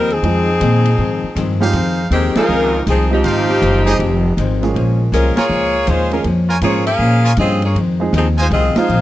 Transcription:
Already playing: D#2 F2 D#3 G3 G#3 C4 D#4 A#4
0.10 F3 C4 D#4 G#4, ride
0.23 F2 D#3 F3 G#3 C4 D#4 G#4, ride
0.61 F2 A#2 D#3 G#3 C4, hi-hat pedal, ride
0.85 ride
0.98 F2 G#2 D#3 G#3 C4
1.23 muted upright bass stroke
1.36 F2 G2 D#3 G#3 C4, hi-hat pedal, ride
1.60 F3 G#3 C4 D#4 G4 G#4 C5 F5, snare
1.73 F2 D#3 G#3 C4, ride
2.11 D#2 F2 D#3 G#3 C4 G4, hi-hat pedal, ride
2.35 F3 G#3 C4 D#4 F4 G#4 A#4 C5 F5, muted upright bass stroke, snare, ride
2.48 C#2 F2 D#3 G#3 C4
2.86 C2 F2 D#3 G#3 C4 G#4, hi-hat pedal, ride
2.90 F3 C4 D#4
3.10 F3 G#3 C4 D#4 F4 G4
3.24 G#1 F2 D#3 G#3 C4 D#4 F4 C5 F5, ride
3.48 snare
3.61 F#1 F2 D#3 G#3 C4, hi-hat pedal, ride
3.86 F3 G#3 C4 D#4 G#4 C5 D#5, ride
3.99 F1 F2 D#3 G#3 C4, ride
4.37 G#1 F2 D#3 G#3 C4, hi-hat pedal, ride
4.62 F3 G#3 A#3 C#4 G#4, snare, ride
4.74 A#1 A#2 F3 G#3 C#4, ride
5.12 C2 A#2 F3 G#3 C#4 F4 A#4, hi-hat pedal, ride
5.36 A#3 F4 G#4 A#4 C#5 G#5, muted upright bass stroke, snare, ride
5.49 C#2 A#2 F3 G#3 C#4
5.87 D#2 A#2 F3 G#3 C#4 F4 C5, hi-hat pedal, ride
6.11 F3 G#3 A#3 C#4 F4 G#4 A#4, ride
6.24 F2 A#2 F3 G#3 C#4, ride
6.49 F4 A#4 C#5 G#5
6.61 G#2 A#2 F3 G#3 A#3 C#4 F4 G#4 C#5, hi-hat pedal, ride
6.86 C#4 G#4 A#4 F5, ride
6.99 A#2 F3 G#3 C#4
7.25 F4 A#4 C#5 G#5
7.37 G2 A#2 F3 G#3 C4 C#4 F4 G#4 D#5, hi-hat pedal, ride
7.62 A#3 F4 G#4 C#5, ride
7.75 F2 D#3 G#3 C4, ride
8.00 F3 G#3 C4 D#4 G#4
8.13 D#2 F2 D#3 G#3 C4, hi-hat pedal, ride
8.18 F3 C4 D#4 G#4
8.38 G#3 D#4 F4 C5 D#5 G#5, ride
8.51 C2 F2 D#3 G#3 C4 F4 G#4 D#5, ride
8.55 C4
8.75 F3 G#3 C4 D#4 F4 G#4 C5 F5, muted upright bass stroke, snare, ride
8.89 A#1 F2 D#3 G#3 C4, hi-hat pedal

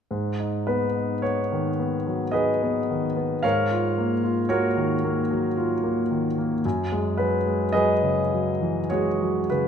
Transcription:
0.11 G#2
0.40 D#4
0.67 B3 B4
0.96 D#4
1.22 B3 C#5
1.52 D#3
1.80 B3
2.07 F#3
2.31 D#4 G#4 B4 D#5
2.62 B3
2.90 D#3
3.16 B3
3.43 G#2 A#4 C#5 F5
3.71 F4
3.98 A#3
4.24 F4
4.49 A#3 F#4 A#4 C#5
4.77 D#3
5.04 A#3
5.31 F#3
5.57 F4
5.83 A#3
6.11 D#3
6.38 A#3
6.65 F#2
6.92 G#3
7.17 F#3 B4
7.47 G#3
7.72 F#3 G#4 B4 D#5
8.03 C#3
8.32 F#3
8.61 E3
8.89 G#3 F#4 G#4 C#5
9.21 F#3
9.50 C#3 B4

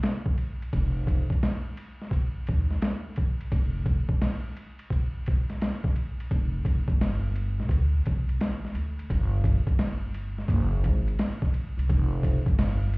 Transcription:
0.03 snare, hi-hat pedal, ride
0.26 kick
0.38 ride
0.62 ride
0.73 F1, kick, ride
1.07 kick, ride
1.30 kick, ride
1.43 snare, hi-hat pedal, ride
1.77 ride
2.02 snare
2.11 kick, ride
2.47 D#2, kick, ride
2.71 snare
2.82 snare, hi-hat pedal, ride
3.16 kick, ride
3.41 ride
3.52 F1, kick, ride
3.86 kick, ride
4.09 kick
4.22 snare, hi-hat pedal, ride
4.57 ride
4.79 ride
4.90 kick, ride
5.26 kick, ride
5.50 snare, ride
5.61 snare, hi-hat pedal, ride
5.84 kick, snare
5.96 ride
6.20 ride
6.31 F1, kick, ride
6.65 kick, ride
6.88 G1, kick, ride
7.01 snare, hi-hat pedal, ride
7.36 ride
7.60 snare
7.69 D2, kick, ride
8.05 C2, kick, ride
8.29 ride
8.40 A1, snare, hi-hat pedal, ride
8.65 snare
8.75 D2, ride
8.99 ride
9.10 G1, kick, ride
9.44 kick, ride
9.67 G1, kick, ride
9.79 snare, hi-hat pedal, ride
10.14 ride
10.38 snare
10.48 F#1, kick, ride
10.84 G#1, kick, ride
11.08 ride
11.19 snare, hi-hat pedal, ride
11.42 kick, snare
11.54 ride
11.78 C2, ride
11.89 F1, kick, ride
12.23 kick, ride
12.46 G1, kick, ride
12.59 snare, hi-hat pedal, ride
12.94 ride

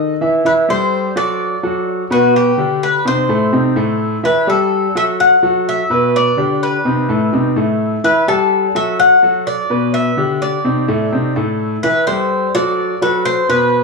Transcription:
Already playing: D#3 D#4 A4 D#5
0.21 E3 E4 E5
0.45 E3 E4 B4 E5
0.69 G3 G4 A4 C5
1.16 F#3 F#4 A4 D5
1.63 F#3 F#4 A4
2.11 B2 B3 F#4 B4
2.36 G4
2.58 D3 D4 G4
2.83 B4
3.05 C3 C4 D#4 C5
3.29 A2 A3 A4
3.52 C3 C4 D#4
3.76 A2 A3 A4
4.23 E3 E4 B4 E5
4.47 G3 G4 A4
4.95 F#3 F#4 A4 E5
5.20 F#5
5.43 F#3 F#4 A4
5.69 E5
5.90 B2 B3 B4
6.16 D5
6.37 D3 D4 G4
6.63 B4
6.85 C3 C4 D#4
7.09 A2 A3 A4
7.33 C3 C4 D#4
7.56 A2 A3 A4
8.04 E3 E4 B4 E5
8.28 G3 G4 A4
8.75 F#3 F#4 A4 E5
9.00 F#5
9.23 F#3 F#4 A4
9.47 D5
9.70 B2 B3 B4
9.94 E5
10.17 D3 D4 G4
10.42 D5
10.64 C3 C4 D#4
10.88 A2 A3 A4
11.12 C3 C4 D#4
11.36 A2 A3 A4
11.83 E3 E4 B4 E5
12.07 G3 G4 A4 C5
12.55 F#3 F#4 A4 D5
13.02 F#3 F#4 A4 B4
13.25 C5
13.49 B2 B3 B4

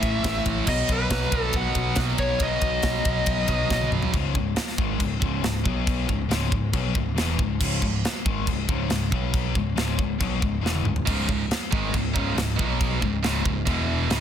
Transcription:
Already playing: A2 E3 A3 E5
0.03 A1 A2 E3 A3, kick, ride
0.24 A1 A2 E3 A3, kick, snare, ride
0.45 A1, kick, ride
0.67 B1 B2 F#3 D#5, kick, crash
0.71 B3
0.89 B1 B4, kick, ride
1.10 B1, kick, snare, ride
1.32 B1 B2 F#3 B3, kick, ride
1.41 A4
1.53 B1 F#5, kick, ride
1.75 B1 B2 F#3 B3, kick, ride
1.96 B1 B2 F#3, kick, snare, ride
2.00 B3
2.18 B1 C#5, kick, ride
2.40 B1 B2 F#3 B3 D#5, kick, ride
2.61 B1, kick, ride
2.83 B1, kick, snare, ride
3.04 B1 B2 F#3 B3, kick, ride
3.26 B1, kick, ride
3.48 B1 B2 F#3 B3, kick, ride
3.69 B1 B2 F#3 B3, kick, snare
3.81 high tom
3.90 B1, mid tom
4.02 floor tom
4.12 C#1 C#2 G#2 C#3, kick, china
4.34 C#1 C#2 G#2, kick
4.56 snare, china
4.78 G#1 G#2 D#3 G#3, kick
5.00 C#1 C#2 G#2, kick, china
5.20 C#1 C#2 G#2 C#3, kick
5.42 C#1 C#2 G#2, snare, china
5.63 B1 B2 F#3 B3, kick
5.87 kick, china
6.07 C#1 C#2 G#2, kick
6.28 C#1 C#2 G#2 C#3, snare, china
6.51 C#1 C#2 G#2, kick
6.73 B1 B2 F#3 B3, kick, china
6.95 C#1 C#2 G#2, kick
7.15 E1 E2 B2, snare, china
7.19 E3
7.38 C#1 C#2 G#2, kick
7.61 C#1 C#2 G#2 C#3, kick, crash, china
7.82 C#1 C#2 G#2, kick
8.05 snare, china
8.25 G#1 G#2 D#3 G#3, kick
8.47 C#1 C#2 G#2, kick, china
8.67 C#1 C#2 G#2 C#3, kick
8.90 C#1 C#2 G#2, snare, china
9.12 B1 B2 F#3 B3, kick
9.34 kick, china
9.55 C#1 C#2 G#2, kick
9.76 C#1 C#2 G#2 C#3, snare, china
9.97 C#1 C#2 G#2, kick
10.20 B1 B2 F#3 B3, kick, china
10.41 C#1 C#2 G#2, kick
10.61 E1 E2 B2 E3
10.66 snare
10.75 high tom
10.84 C#1 C#2 G#2, mid tom
10.96 floor tom
11.06 C#1 C#2 G#2 C#3, kick, china, crash
11.28 C#1 C#2 G#2, kick
11.51 snare, china
11.72 G#1 G#2 D#3 G#3, kick
11.93 C#1 C#2 G#2, kick, china
12.15 C#1 C#2 G#2 C#3, kick
12.36 C#1 C#2 G#2, snare, china
12.58 B1 B2 F#3 B3, kick
12.81 kick, china
13.02 C#1 C#2 G#2, kick
13.22 C#1 C#2 G#2 C#3, snare, china
13.45 C#1 C#2 G#2, kick
13.66 E1 E2 B2 E3, kick, china
14.09 C#1 C#2 G#2 C#3, snare, china

